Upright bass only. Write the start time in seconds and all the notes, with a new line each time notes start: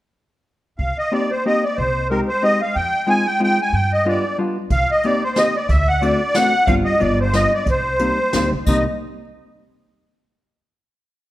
0.79 C2
1.78 C2
2.76 F2
3.73 G2
4.70 C2
5.69 D2
6.67 G1
7.02 G1
7.66 C2
8.34 D2
8.52 C2
8.67 C2